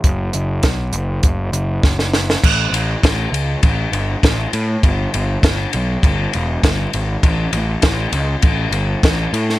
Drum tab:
CC |----------------|x---------------|----------------|----------------|
RD |----------------|--x-x-x-x-x-x-x-|x-x-x-x-x-x-x-x-|x-x-x-x-x-x-x-x-|
HH |x-x-x-x-x-x-----|----------------|----------------|----------------|
SD |----o-------oooo|----o-------o---|----o-------o---|----o-------o--o|
BD |o---o---o---o---|o---o---o---o---|o---o---o---o---|o---o---o---o---|